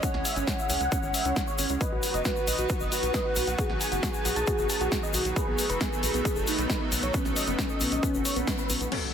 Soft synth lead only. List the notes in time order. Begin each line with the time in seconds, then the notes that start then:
0.03 F#5
1.81 B4
2.25 B4
2.92 B4
3.58 G#4
5.36 G#4
5.81 G#4
6.47 D#4
7.14 C#4
8.92 A4